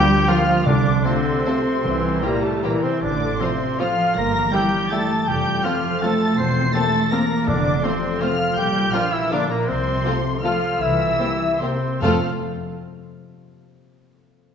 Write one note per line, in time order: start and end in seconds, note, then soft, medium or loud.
0.00 0.68 D3 medium
0.00 1.86 F3 loud
0.00 0.28 G3 loud
0.00 0.68 D4 medium
0.00 0.29 F4 medium
0.00 0.30 G4 loud
0.00 1.86 F5 medium
0.00 0.27 G5 loud
0.00 0.27 G6 loud
0.10 0.68 A#4 medium
0.29 0.66 F3 medium
0.29 0.37 F3 medium
0.29 0.43 A#3 medium
0.29 0.42 F4 medium
0.29 0.66 F4 medium
0.29 0.37 F4 medium
0.29 1.05 F4 medium
0.29 0.37 A#4 medium
0.29 0.66 F5 medium
0.29 0.67 F6 medium
0.48 0.68 A#3 medium
0.66 0.99 C2 medium
0.66 1.22 C3 loud
0.66 1.84 C3 medium
0.66 1.04 D3 medium
0.66 1.07 D4 medium
0.66 1.05 D5 medium
0.66 1.05 D6 loud
0.86 2.03 C4 medium
1.05 2.24 C3 medium
1.05 1.44 D3 medium
1.05 1.21 A3 medium
1.05 2.25 C4 medium
1.05 1.20 F4 medium
1.05 1.46 F4 medium
1.05 1.13 A4 medium
1.05 1.13 C5 medium
1.05 2.01 C5 medium
1.05 2.24 C6 medium
1.27 1.86 A4 medium
1.46 1.85 C3 medium
1.46 1.60 A3 medium
1.46 1.60 F4 medium
1.46 1.86 F4 medium
1.46 1.54 A4 medium
1.46 1.54 C5 medium
1.66 1.86 A3 medium
1.84 2.16 C2 medium
1.84 2.40 C3 medium
1.84 3.04 C3 medium
1.84 2.24 E3 medium
2.04 4.18 C4 soft
2.23 2.44 A#2 medium
2.23 2.64 G3 medium
2.23 2.39 G3 soft
2.23 2.45 A#3 medium
2.23 2.39 E4 medium
2.23 2.64 E4 soft
2.23 2.31 G4 medium
2.23 2.44 A#4 medium
2.23 2.31 C5 medium
2.23 2.44 A#5 medium
2.44 2.64 A2 medium
2.44 2.63 A3 medium
2.44 3.04 G4 medium
2.44 2.64 A4 medium
2.44 2.64 A5 medium
2.63 2.71 A#2 medium
2.63 3.02 E3 medium
2.63 2.78 G3 medium
2.63 2.83 A#3 medium
2.63 2.78 E4 medium
2.63 3.04 E4 soft
2.63 2.71 G4 medium
2.63 2.83 A#4 medium
2.63 2.72 C5 medium
2.63 2.84 A#5 medium
2.83 2.91 C3 medium
2.83 3.04 G3 soft
2.83 3.04 C4 medium
2.83 3.02 C5 medium
2.83 3.02 C6 medium
3.02 3.34 A1 medium
3.02 4.18 A2 medium
3.02 3.39 D3 medium
3.02 3.42 D4 medium
3.02 3.39 D5 medium
3.02 3.40 D6 loud
3.21 4.18 A3 medium
3.40 3.79 C3 medium
3.40 3.48 F3 medium
3.40 3.55 F3 medium
3.40 3.81 C4 medium
3.40 3.49 C4 medium
3.40 3.48 F4 medium
3.40 3.55 F4 medium
3.40 3.79 F4 medium
3.40 3.79 C5 medium
3.40 3.49 C5 medium
3.40 3.80 C6 medium
3.60 4.18 C5 medium
3.79 4.16 F3 medium
3.79 3.93 F3 medium
3.79 3.88 F3 medium
3.79 3.88 C4 medium
3.79 4.15 F4 medium
3.79 3.88 F4 medium
3.79 3.93 F4 medium
3.79 4.18 F4 soft
3.79 3.88 C5 medium
3.79 4.16 F5 medium
3.79 4.16 F6 medium
3.99 4.18 F3 medium
4.16 4.47 G1 medium
4.16 5.29 G2 medium
4.16 4.53 A#3 medium
4.16 4.52 A#4 medium
4.16 4.52 A#5 medium
4.16 4.53 A#6 loud
4.34 5.29 E3 medium
4.52 4.61 G3 medium
4.52 4.92 G3 medium
4.52 4.67 G3 soft
4.52 4.61 E4 medium
4.52 4.67 E4 soft
4.52 4.91 E4 soft
4.52 4.61 G4 medium
4.52 4.93 G4 medium
4.52 4.91 G5 medium
4.52 4.92 G6 medium
4.73 5.29 G4 medium
4.91 5.00 G3 medium
4.91 5.05 G3 medium
4.91 5.28 A3 medium
4.91 5.00 E4 medium
4.91 5.00 E4 soft
4.91 5.29 E4 medium
4.91 5.05 E4 medium
4.91 5.00 G4 medium
4.91 5.29 A4 medium
4.91 5.27 A5 medium
4.91 5.28 A6 medium
5.11 5.29 G3 soft
5.28 5.58 F1 medium
5.28 6.40 F2 medium
5.28 5.64 G3 medium
5.28 5.66 G4 medium
5.28 5.65 G5 medium
5.28 5.64 G6 loud
5.46 6.40 C3 medium
5.64 6.02 F3 medium
5.64 5.72 A3 medium
5.64 5.78 A3 soft
5.64 5.72 C4 medium
5.64 5.78 C4 medium
5.64 5.73 F4 medium
5.64 6.02 F4 medium
5.64 6.04 F4 medium
5.64 5.73 C5 soft
5.64 6.02 F5 medium
5.64 6.02 F6 medium
5.84 6.40 A4 medium
6.02 6.15 A3 medium
6.02 6.38 A3 medium
6.02 6.11 A3 medium
6.02 6.15 C4 medium
6.02 6.10 C4 medium
6.02 6.11 F4 medium
6.02 6.40 F4 medium
6.02 6.37 A4 medium
6.02 6.11 C5 medium
6.02 6.38 A5 medium
6.02 6.38 A6 medium
6.21 6.40 A3 medium
6.38 6.68 E1 medium
6.38 7.49 E2 medium
6.38 6.74 C4 medium
6.38 6.73 C5 medium
6.38 6.73 C6 medium
6.38 6.74 C7 loud
6.56 7.49 E3 soft
6.74 7.11 A3 medium
6.74 6.82 A#3 medium
6.74 6.88 A#3 soft
6.74 6.82 C4 medium
6.74 6.88 C4 medium
6.74 6.82 G4 medium
6.74 7.11 G4 medium
6.74 7.14 A4 medium
6.74 6.82 C5 medium
6.74 7.11 A5 medium
6.74 7.12 A6 loud
7.12 7.20 A#3 medium
7.12 7.48 A#3 medium
7.12 7.25 A#3 medium
7.12 7.25 C4 medium
7.12 7.20 C4 medium
7.12 7.20 G4 medium
7.12 7.49 G4 medium
7.12 7.49 A#4 medium
7.12 7.20 C5 medium
7.12 7.47 A#5 medium
7.12 7.48 A#6 medium
7.31 7.49 A#3 medium
7.47 7.78 F1 medium
7.47 8.58 F2 medium
7.47 7.99 F2 medium
7.47 7.84 D3 medium
7.47 7.86 D4 medium
7.47 7.83 D5 medium
7.47 7.83 D6 loud
7.65 8.58 C3 medium
7.84 8.21 C3 medium
7.84 7.97 A3 medium
7.84 7.92 A3 medium
7.84 7.97 C4 medium
7.84 7.92 C4 medium
7.84 8.23 C4 medium
7.84 7.92 F4 medium
7.84 8.20 F4 medium
7.84 8.21 C5 medium
7.84 7.92 C5 medium
7.84 8.21 C6 medium
8.03 8.58 A4 medium
8.21 8.57 F3 medium
8.21 8.34 A3 medium
8.21 8.30 A3 medium
8.21 8.34 C4 medium
8.21 8.30 C4 medium
8.21 8.29 F4 medium
8.21 8.56 F4 medium
8.21 8.93 F4 medium
8.21 8.29 C5 medium
8.21 8.56 F5 medium
8.21 8.57 F6 loud
8.40 8.58 A3 medium
8.57 8.87 A#1 medium
8.57 9.69 A#2 medium
8.57 8.93 G3 medium
8.57 8.95 G4 medium
8.57 8.93 G5 medium
8.57 8.93 G6 loud
8.75 10.83 F3 medium
8.93 9.02 F3 medium
8.93 9.13 F3 medium
8.93 9.07 A#3 medium
8.93 9.07 D4 soft
8.93 9.02 D4 medium
8.93 9.14 F4 medium
8.93 9.01 F4 medium
8.93 9.31 F4 medium
8.93 9.01 A#4 medium
8.93 9.12 F5 medium
8.93 9.12 F6 loud
9.12 9.32 E3 medium
9.12 9.31 E4 medium
9.12 9.70 A#4 medium
9.12 9.32 E5 medium
9.12 9.31 E6 medium
9.31 9.50 D3 medium
9.31 9.39 F3 medium
9.31 9.45 A#3 medium
9.31 9.40 D4 medium
9.31 9.50 D4 medium
9.31 9.45 D4 medium
9.31 10.04 F4 medium
9.31 9.40 F4 medium
9.31 9.40 A#4 medium
9.31 9.50 D5 medium
9.31 9.50 D6 loud
9.50 9.68 A#2 medium
9.50 9.69 A#3 medium
9.50 9.70 A#3 medium
9.50 9.67 A#4 medium
9.50 9.68 A#5 medium
9.68 9.99 C2 medium
9.68 10.80 C3 medium
9.68 10.44 C3 medium
9.68 10.17 C4 medium
9.68 10.20 C5 medium
9.68 10.43 C6 loud
9.86 13.24 C4 medium
10.05 10.14 F3 medium
10.05 10.19 A3 medium
10.05 10.14 C4 medium
10.05 10.19 F4 medium
10.05 10.44 F4 medium
10.05 10.14 F4 medium
10.05 10.14 A4 medium
10.25 10.83 A4 medium
10.44 10.52 F3 medium
10.44 10.81 F3 medium
10.44 10.58 A3 medium
10.44 10.52 C4 medium
10.44 10.52 F4 medium
10.44 10.58 F4 medium
10.44 10.83 F4 medium
10.44 10.52 A4 medium
10.44 10.81 F5 medium
10.44 10.80 F6 medium
10.63 10.83 A3 medium
10.81 11.13 C2 medium
10.81 12.04 C3 medium
10.81 11.60 E3 medium
10.81 11.61 E4 medium
10.81 11.62 E5 medium
10.81 11.61 E6 loud
11.00 12.04 G3 soft
11.19 11.27 A#3 medium
11.19 11.35 A#3 soft
11.19 11.27 C4 medium
11.19 11.27 G4 soft
11.19 11.35 G4 soft
11.19 11.27 C5 soft
11.41 12.05 A#4 medium
11.61 12.02 C3 medium
11.61 11.69 A#3 medium
11.61 11.76 A#3 medium
11.61 11.69 C4 soft
11.61 12.02 C4 medium
11.61 11.76 G4 medium
11.61 11.69 G4 medium
11.61 12.04 G4 soft
11.61 12.03 C5 medium
11.61 11.69 C5 medium
11.61 12.03 C6 medium
11.83 12.04 A#3 soft
11.99 12.20 F2 medium
11.99 12.24 F2 medium
11.99 12.24 F3 medium
11.99 12.24 A3 medium
11.99 12.19 C4 medium
11.99 12.19 F4 medium
11.99 12.24 F4 medium
11.99 12.18 A4 medium
11.99 12.24 A4 medium
11.99 12.24 C5 medium
11.99 12.24 F5 medium
11.99 12.24 F6 medium
12.04 12.24 C5 medium
12.04 12.24 F5 medium